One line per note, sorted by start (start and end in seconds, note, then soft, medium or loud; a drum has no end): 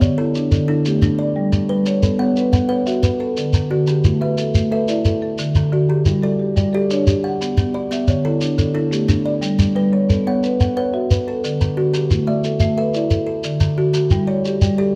0.00 0.35 D3 medium
0.00 0.18 B3 medium
0.00 0.35 C#5 medium
0.00 0.18 D5 medium
0.00 0.18 E5 medium
0.00 shekere medium
0.18 0.52 D3 medium
0.18 0.67 E4 medium
0.18 0.50 A4 medium
0.35 0.86 D4 medium
0.35 shekere medium
0.51 0.86 D3 medium
0.51 0.67 A4 medium
0.51 shekere medium
0.68 1.01 D4 medium
0.68 1.19 E4 medium
0.68 1.19 A4 medium
0.85 1.03 A3 medium
0.85 1.19 G4 medium
0.85 shekere medium
1.02 1.19 D4 medium
1.02 shekere medium
1.19 1.69 D5 medium
1.19 1.70 D5 medium
1.36 1.68 G3 medium
1.52 1.85 G3 medium
1.52 shekere medium
1.69 2.03 G3 medium
1.69 2.20 B4 medium
1.86 2.20 G3 medium
1.86 2.20 C#5 medium
1.86 shekere medium
2.03 2.37 B3 medium
2.03 2.37 A4 medium
2.03 shekere medium
2.19 2.53 B3 medium
2.19 2.69 C#5 medium
2.19 2.52 F#5 medium
2.37 2.87 B4 medium
2.37 shekere medium
2.53 2.87 B3 medium
2.53 2.68 F#5 medium
2.53 shekere medium
2.69 3.02 B4 medium
2.69 3.21 C#5 medium
2.69 3.20 F#5 medium
2.86 3.04 F#4 medium
2.86 3.20 E5 medium
2.86 shekere medium
3.03 3.20 B4 medium
3.03 shekere medium
3.20 3.71 A4 medium
3.37 3.69 D3 medium
3.37 shekere medium
3.53 3.87 D3 medium
3.53 shekere medium
3.71 4.05 D3 medium
3.71 4.21 F#4 medium
3.87 4.21 D3 medium
3.87 4.22 G4 medium
3.87 shekere medium
4.04 4.39 A3 medium
4.04 4.39 E4 medium
4.04 shekere medium
4.21 4.55 A3 medium
4.21 4.70 B4 medium
4.21 4.71 E5 medium
4.38 4.89 A4 medium
4.38 shekere medium
4.55 4.89 A3 medium
4.55 shekere medium
4.72 5.05 A4 medium
4.72 5.22 B4 medium
4.72 5.22 E5 medium
4.88 5.05 E4 medium
4.88 5.22 D5 medium
4.88 shekere medium
5.05 5.22 A4 medium
5.05 shekere medium
5.22 5.73 A4 medium
5.38 5.71 D3 medium
5.38 shekere medium
5.55 5.88 D3 medium
5.55 shekere medium
5.72 6.06 D3 medium
5.72 6.23 F#4 medium
5.89 6.23 D3 medium
5.89 6.23 G4 medium
6.05 6.40 G3 medium
6.05 6.40 E4 medium
6.05 shekere medium
6.23 6.57 G3 medium
6.23 6.72 A4 medium
6.23 6.56 D5 medium
6.39 6.90 G4 medium
6.56 6.90 G3 medium
6.56 6.73 D5 medium
6.56 shekere medium
6.73 7.07 G4 medium
6.73 7.24 A4 medium
6.73 7.24 D5 medium
6.90 7.07 D4 medium
6.90 7.24 C#5 medium
6.90 shekere medium
7.07 7.24 G4 medium
7.07 shekere medium
7.24 7.74 F#5 medium
7.24 7.75 F#5 medium
7.41 7.74 B3 medium
7.41 shekere medium
7.57 7.90 B3 medium
7.57 shekere medium
7.74 8.08 B3 medium
7.74 8.25 D5 medium
7.91 8.25 B3 medium
7.91 8.25 E5 medium
7.91 shekere medium
8.08 8.42 D3 medium
8.08 8.42 C#5 medium
8.08 shekere medium
8.25 8.58 D3 medium
8.25 8.74 E4 medium
8.25 8.57 A4 medium
8.41 8.92 D4 medium
8.41 shekere medium
8.58 8.92 D3 medium
8.58 8.74 A4 medium
8.58 shekere medium
8.75 9.07 D4 medium
8.75 9.26 E4 medium
8.75 9.25 A4 medium
8.91 9.08 A3 medium
8.91 9.25 G4 medium
8.91 shekere medium
9.08 9.25 D4 medium
9.08 shekere medium
9.25 9.76 D5 medium
9.41 9.74 G3 medium
9.41 shekere medium
9.59 9.92 G3 medium
9.59 shekere medium
9.76 10.09 G3 medium
9.76 10.26 B4 medium
9.92 10.26 G3 medium
9.92 10.25 C#5 medium
10.09 10.43 B3 medium
10.09 10.43 A4 medium
10.09 shekere medium
10.27 10.60 B3 medium
10.27 10.75 C#5 medium
10.27 10.60 F#5 medium
10.43 10.94 B4 medium
10.43 shekere medium
10.60 10.94 B3 medium
10.60 10.76 F#5 medium
10.60 shekere medium
10.77 11.10 B4 medium
10.77 11.27 C#5 medium
10.77 11.27 F#5 medium
10.94 11.10 F#4 medium
10.94 11.27 E5 medium
11.11 11.27 B4 medium
11.11 shekere medium
11.28 11.78 A4 medium
11.44 11.76 D3 medium
11.44 shekere medium
11.61 11.92 D3 medium
11.61 shekere medium
11.77 12.11 D3 medium
11.77 12.28 F#4 medium
11.93 12.27 D3 medium
11.93 12.28 G4 medium
11.93 shekere medium
12.11 12.44 A3 medium
12.11 12.44 E4 medium
12.11 shekere medium
12.27 12.61 A3 medium
12.27 12.78 D5 medium
12.27 12.59 E5 medium
12.44 12.95 A4 medium
12.44 shekere medium
12.60 12.95 A3 medium
12.60 12.76 E5 medium
12.60 shekere medium
12.78 13.09 A4 medium
12.78 13.28 B4 medium
12.78 13.28 E5 medium
12.94 13.11 E4 medium
12.94 13.28 D5 medium
12.94 shekere medium
13.11 13.25 A4 medium
13.11 shekere medium
13.27 13.78 A4 medium
13.44 13.76 D3 medium
13.44 shekere medium
13.60 13.92 D3 medium
13.60 shekere medium
13.78 14.12 D3 medium
13.78 14.28 F#4 medium
13.93 14.28 D3 medium
13.93 14.28 F#4 medium
13.93 shekere medium
14.11 14.45 G3 medium
14.11 14.45 E4 medium
14.11 shekere medium
14.27 14.62 G3 medium
14.27 14.79 C#5 medium
14.27 14.60 D5 medium
14.45 14.95 G4 medium
14.45 shekere medium
14.61 14.95 G3 medium
14.61 14.77 D5 medium
14.61 shekere medium
14.78 14.95 G4 medium
14.78 14.95 A4 medium
14.78 14.95 D5 medium